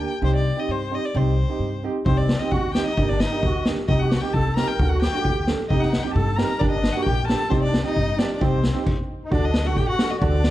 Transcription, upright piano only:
0.00 0.10 A#3 medium
0.00 0.11 D4 medium
0.00 0.11 G4 medium
0.21 0.39 C4 medium
0.21 0.39 D#4 medium
0.21 0.40 G4 medium
0.57 0.74 C4 medium
0.57 0.74 D#4 medium
0.57 0.74 G4 medium
0.91 1.03 C4 medium
0.91 1.03 D#4 medium
0.91 1.03 G4 medium
1.15 1.32 C4 medium
1.15 1.32 D#4 medium
1.15 1.32 G4 medium
1.49 1.66 C4 medium
1.49 1.66 D#4 medium
1.49 1.67 G4 medium
1.83 1.95 C4 medium
1.83 1.95 D#4 medium
1.83 1.95 G4 medium
2.06 2.23 C4 medium
2.06 2.23 D#4 medium
2.06 2.23 G4 medium
2.41 2.58 C4 medium
2.41 2.58 D#4 medium
2.41 2.58 G4 medium
2.75 2.86 C4 medium
2.75 2.87 D#4 medium
2.75 2.87 G4 medium
2.98 3.15 A#3 medium
2.98 3.15 D4 medium
2.98 3.15 G4 medium
3.31 3.49 A#3 medium
3.31 3.49 D4 medium
3.31 3.49 G4 medium
3.66 3.77 A#3 medium
3.66 3.77 D4 medium
3.66 3.78 G4 medium
3.89 4.06 C4 medium
3.89 4.06 D#4 medium
3.89 4.06 G4 medium
4.23 4.40 C4 medium
4.23 4.40 D#4 medium
4.23 4.40 G4 medium
4.57 4.68 C4 medium
4.57 4.68 D#4 medium
4.57 4.68 G4 medium
4.80 4.97 A3 medium
4.80 4.97 D4 medium
4.80 4.97 F#4 medium
5.14 5.31 A3 medium
5.14 5.31 D4 medium
5.14 5.31 F#4 medium
5.47 5.59 A3 medium
5.47 5.59 D4 medium
5.47 5.59 A4 medium
5.70 5.87 C4 medium
5.70 5.87 D#4 medium
5.70 5.88 G4 medium
6.04 6.21 C4 medium
6.04 6.21 D#4 soft
6.04 6.22 G4 medium
6.37 6.49 C4 medium
6.37 6.49 D#4 medium
6.37 6.50 G4 medium
6.60 6.77 A#3 medium
6.60 6.77 D4 medium
6.60 6.78 G4 medium
6.94 7.11 A#3 medium
6.94 7.12 D4 medium
6.94 7.12 G4 medium
7.28 7.40 A#3 medium
7.28 7.40 D4 medium
7.28 7.40 G4 medium
7.49 7.67 C4 medium
7.49 7.68 D#4 medium
7.49 7.68 G4 medium
7.84 8.01 C4 medium
7.84 8.02 D#4 medium
7.84 8.02 G4 medium
8.18 8.30 C4 medium
8.18 8.30 D#4 medium
8.18 8.30 G4 medium
8.41 8.58 C4 medium
8.41 8.58 D#4 medium
8.41 8.58 G4 medium
8.74 8.86 C4 medium
8.74 8.86 D#4 medium
8.74 8.87 G4 medium
9.30 9.48 A3 medium
9.30 9.48 D4 medium
9.30 9.48 F#4 medium
9.64 9.82 A3 medium
9.64 9.82 D4 medium
9.64 9.82 A4 medium
9.99 10.10 A3 medium
9.99 10.10 D4 medium
9.99 10.10 F#4 medium
10.21 10.38 A3 medium
10.21 10.38 D4 medium
10.21 10.39 F#4 medium

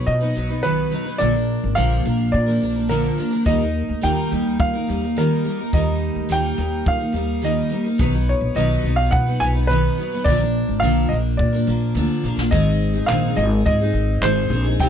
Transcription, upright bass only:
0.07 0.30 B2 loud
0.36 0.82 B1 medium
1.21 1.55 A#1 medium
1.64 1.75 G#1 medium
1.78 2.01 A#1 medium
2.06 2.28 A#1 medium
2.34 2.57 A#2 medium
2.62 3.08 A#1 medium
3.46 3.81 D#2 medium
3.89 4.01 D2 medium
4.03 4.27 D#2 medium
4.32 4.55 D#2 medium
4.60 4.83 D#3 medium
4.89 5.35 D#2 medium
5.73 6.08 D#2 medium
6.15 6.27 D2 medium
6.30 6.53 D#2 medium
6.58 6.81 D#2 medium
6.87 7.10 D#3 loud
7.14 7.61 D#2 medium
7.99 8.34 B1 loud
8.41 8.53 A#1 medium
8.55 8.79 B1 medium
8.83 9.07 B1 medium
9.12 9.36 B2 loud
9.40 9.87 B1 medium
10.26 10.61 A#1 medium
10.68 10.80 G#1 medium
10.82 11.06 A#1 medium
11.12 11.35 A#1 medium
11.40 11.63 A#2 medium
11.67 11.91 A#1 medium
11.95 12.07 D2 medium
12.23 12.35 A#1 medium
12.37 12.49 A#1 medium
12.53 12.99 G#1 medium
13.08 13.32 A#1 medium
13.37 13.61 G#1 loud
13.66 13.90 G#2 medium
13.93 14.17 G#1 medium
14.22 14.45 G#1 medium
14.50 14.74 A#1 medium
14.80 14.89 C2 loud

